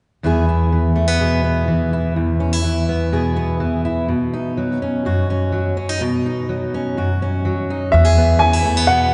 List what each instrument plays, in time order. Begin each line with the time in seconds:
0.23 steel-string acoustic guitar E2 E3 B3 E4 G#4
0.49 steel-string acoustic guitar E4
0.72 steel-string acoustic guitar E3
0.96 steel-string acoustic guitar A3
1.08 steel-string acoustic guitar B3
1.20 steel-string acoustic guitar B2 G#4
1.44 steel-string acoustic guitar B3
1.68 steel-string acoustic guitar E3
1.93 steel-string acoustic guitar E4
2.16 steel-string acoustic guitar E2
2.40 steel-string acoustic guitar C#4
2.53 steel-string acoustic guitar E4
2.64 steel-string acoustic guitar E3
2.89 steel-string acoustic guitar B3
3.12 steel-string acoustic guitar B2 G#4
3.36 steel-string acoustic guitar B3
3.60 steel-string acoustic guitar E3
3.85 steel-string acoustic guitar E4
4.08 steel-string acoustic guitar B2
4.34 steel-string acoustic guitar D#4
4.57 steel-string acoustic guitar F#3
4.82 steel-string acoustic guitar C#4
5.05 steel-string acoustic guitar F#2 F#4
5.30 steel-string acoustic guitar C#4
5.52 steel-string acoustic guitar F#3
5.77 steel-string acoustic guitar C#4
5.89 steel-string acoustic guitar D#4
6.01 steel-string acoustic guitar B2
6.26 steel-string acoustic guitar D#4
6.49 steel-string acoustic guitar F#3
6.74 steel-string acoustic guitar C#4
6.97 steel-string acoustic guitar F#2 F#4
7.22 steel-string acoustic guitar C#4
7.45 steel-string acoustic guitar F#3
7.70 steel-string acoustic guitar D#4
7.92 upright bass E2, steel-string acoustic guitar E2 F#4, upright piano E5
8.05 steel-string acoustic guitar G#4
8.18 steel-string acoustic guitar B3
8.39 steel-string acoustic guitar E3 C#4, upright piano G#5
8.53 steel-string acoustic guitar E4
8.65 steel-string acoustic guitar A3
8.77 steel-string acoustic guitar B3
8.87 steel-string acoustic guitar B2, upright piano F#5